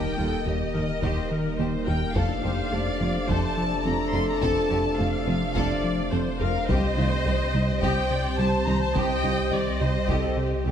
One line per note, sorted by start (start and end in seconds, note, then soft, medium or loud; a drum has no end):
0.00 2.17 D#1 medium
0.00 2.13 D#3 soft
0.00 2.13 G3 soft
0.00 2.12 A#3 medium
0.00 2.12 A#3 soft
0.00 2.12 D#4 medium
0.00 0.16 G4 medium
0.00 2.12 G4 medium
0.00 0.18 A#4 soft
0.00 2.13 A#4 soft
0.00 2.12 D#5 soft
0.00 2.12 D#5 medium
0.00 0.46 G5 medium
0.18 0.26 D#2 soft
0.18 0.35 D#2 soft
0.18 0.26 D#2 soft
0.18 0.35 G3 soft
0.18 0.26 F4 soft
0.18 0.47 A4 medium
0.46 0.63 D#2 soft
0.46 0.55 D#2 soft
0.46 0.63 G3 medium
0.46 0.54 G4 soft
0.46 0.75 G4 soft
0.46 1.60 D#5 medium
0.74 0.83 D#2 soft
0.74 0.92 D#3 medium
0.74 0.91 A#3 medium
0.74 0.83 D#4 soft
0.74 1.03 A#4 soft
1.02 1.20 D#2 medium
1.02 1.11 D#2 medium
1.02 1.20 D#3 medium
1.02 1.29 G4 medium
1.02 1.31 C5 medium
1.02 taiko medium
1.31 1.48 D#3 medium
1.31 1.59 A#4 medium
1.59 1.67 D#2 soft
1.59 1.68 D#2 soft
1.59 1.76 D#3 soft
1.59 1.76 A#3 soft
1.59 1.68 G4 soft
1.59 1.88 C5 soft
1.87 1.95 D#2 soft
1.87 2.05 D#2 soft
1.87 2.04 G3 medium
1.87 1.95 D#4 medium
1.87 2.16 A#4 medium
1.87 2.14 G5 medium
2.15 6.70 F1 medium
2.15 2.24 F1 medium
2.15 2.33 F2 medium
2.15 2.24 F2 medium
2.15 6.52 C3 soft
2.15 2.33 F3 medium
2.15 6.69 A3 medium
2.15 6.52 A3 medium
2.15 6.52 D4 medium
2.15 6.69 D4 medium
2.15 6.69 F4 medium
2.15 2.43 A4 medium
2.15 2.42 A4 medium
2.15 6.52 C5 soft
2.15 6.68 C5 medium
2.15 6.65 D5 medium
2.15 3.29 F5 medium
2.15 taiko medium
2.44 2.52 F1 soft
2.44 2.61 F2 soft
2.44 2.52 F2 soft
2.44 2.61 A3 medium
2.44 2.52 G4 soft
2.44 2.73 C5 medium
2.72 2.80 F1 soft
2.72 2.80 F2 soft
2.72 2.90 F2 soft
2.72 2.89 A3 medium
2.72 2.82 A4 soft
2.72 3.29 D5 medium
3.00 3.09 F1 soft
3.00 3.09 F2 soft
3.00 3.18 F3 medium
3.00 3.18 C4 medium
3.00 3.10 F4 soft
3.29 3.37 F1 medium
3.29 3.46 F2 medium
3.29 3.37 F2 medium
3.29 3.46 F3 medium
3.29 3.56 A4 medium
3.29 3.58 C5 medium
3.29 3.86 A5 medium
3.29 taiko medium
3.57 3.74 F3 medium
3.57 5.56 A4 medium
3.85 3.94 F1 soft
3.85 3.94 F2 soft
3.85 4.02 F3 medium
3.85 4.03 C4 medium
3.85 3.94 A4 soft
3.85 4.14 A#5 medium
4.14 4.22 F1 soft
4.14 4.22 F2 soft
4.14 4.31 F2 soft
4.14 4.31 A3 medium
4.14 4.22 F4 medium
4.14 4.28 C6 medium
4.29 4.43 A#5 medium
4.42 4.50 F1 medium
4.42 4.59 F2 medium
4.42 4.50 F2 medium
4.42 4.59 F3 medium
4.42 4.69 A4 medium
4.42 4.99 A5 medium
4.42 taiko medium
4.70 4.79 F1 soft
4.70 4.88 F2 medium
4.70 4.79 F2 soft
4.70 4.88 A3 medium
4.70 4.79 G4 medium
4.99 5.07 F1 medium
4.99 5.16 F2 medium
4.99 5.07 F2 soft
4.99 5.16 A3 medium
4.99 5.07 A4 soft
4.99 6.12 F5 medium
5.27 5.35 F1 soft
5.27 5.36 F2 soft
5.27 5.44 F3 medium
5.27 5.44 C4 medium
5.27 5.35 F4 soft
5.54 5.64 F1 medium
5.54 5.73 F2 medium
5.54 5.64 F2 medium
5.54 5.73 F3 medium
5.54 5.81 A4 medium
5.54 6.11 D5 medium
5.54 taiko medium
5.84 6.01 F3 medium
6.12 6.20 F1 soft
6.12 6.20 F2 soft
6.12 6.29 F3 soft
6.12 6.29 C4 medium
6.12 6.20 A4 soft
6.12 6.41 C5 medium
6.40 6.49 F1 soft
6.40 6.49 F2 medium
6.40 6.58 F2 soft
6.40 6.58 A3 medium
6.40 6.48 F4 medium
6.40 6.69 A#4 medium
6.40 6.67 F5 medium
6.69 10.71 C2 medium
6.69 6.77 C2 medium
6.69 6.86 C2 medium
6.69 6.86 C3 medium
6.69 10.71 C3 medium
6.69 10.71 G3 medium
6.69 10.71 C4 medium
6.69 6.95 G4 medium
6.69 10.71 G4 medium
6.69 10.71 C5 medium
6.69 7.83 C5 medium
6.69 7.80 D#5 medium
6.69 taiko medium
6.97 7.14 C2 medium
6.97 7.06 C2 medium
6.97 7.06 C2 soft
6.97 7.14 D#3 medium
6.97 7.05 F4 medium
7.26 7.43 C2 medium
7.26 7.34 C2 medium
7.26 7.43 D#3 medium
7.26 7.34 G4 soft
7.54 7.62 C2 medium
7.54 7.62 C2 soft
7.54 7.71 C3 medium
7.54 7.71 G3 medium
7.54 7.62 D#4 soft
7.82 7.99 C2 medium
7.82 7.90 C2 medium
7.82 7.91 C2 medium
7.82 7.99 C3 medium
7.82 8.09 G4 medium
7.82 8.10 D#5 medium
7.82 8.38 G5 medium
7.82 taiko medium
8.10 8.27 C3 soft
8.10 8.39 D5 medium
8.38 8.46 C2 soft
8.38 8.47 C2 soft
8.38 8.55 C3 medium
8.38 8.56 G3 medium
8.38 8.47 G4 medium
8.38 8.96 C5 medium
8.38 8.67 A5 medium
8.67 8.75 C2 soft
8.67 8.84 C2 medium
8.67 8.75 C2 soft
8.67 8.84 D#3 medium
8.67 8.76 D#4 medium
8.67 8.81 A#5 medium
8.81 8.95 A5 medium
8.95 9.12 C2 medium
8.95 9.04 C2 medium
8.95 9.12 C3 medium
8.95 9.22 G4 medium
8.95 9.53 D#5 medium
8.95 9.52 G5 medium
8.95 taiko medium
9.24 9.32 C2 soft
9.24 9.41 C2 medium
9.24 9.32 C2 soft
9.24 9.41 D#3 medium
9.24 9.32 F4 soft
9.52 9.60 C2 soft
9.52 9.69 C2 medium
9.52 9.60 C2 soft
9.52 9.69 D#3 medium
9.52 9.61 G4 soft
9.52 9.81 D5 medium
9.52 10.65 D#5 medium
9.80 9.88 C2 soft
9.80 9.98 C3 medium
9.80 9.97 G3 medium
9.80 9.90 D#4 soft
9.80 10.09 C5 medium
10.08 10.26 C2 medium
10.08 10.17 C2 medium
10.08 10.25 C3 medium
10.08 10.35 G4 medium
10.08 10.38 A4 medium
10.08 taiko medium
10.37 10.54 C3 medium
10.37 10.66 G4 medium
10.65 10.71 C2 soft
10.65 10.71 C3 soft
10.65 10.71 G3 medium
10.65 10.71 G4 soft
10.65 10.71 A4 medium